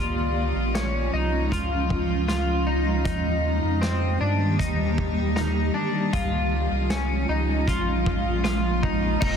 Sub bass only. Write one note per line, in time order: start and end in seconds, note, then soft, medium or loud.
0.00 0.53 C#2 medium
0.56 1.10 A#1 medium
1.13 1.50 C2 medium
1.52 3.07 C#2 loud
3.06 3.60 D#2 loud
3.63 4.18 F2 medium
4.21 4.61 G2 medium
4.60 5.71 D#2 medium
6.13 6.68 C#2 loud
6.71 7.26 C2 medium
7.29 7.69 C#2 loud
7.68 9.17 A#1 loud
9.22 9.37 D#1 loud